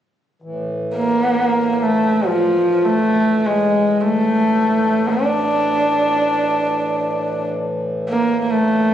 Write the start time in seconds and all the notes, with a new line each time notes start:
0.42 A2 E3
0.97 A#3
1.73 A#3
1.83 A3
2.26 F3
2.85 A3
3.46 G#3
4.01 A3
5.08 D4
8.09 A#3
8.42 A#3
8.51 A3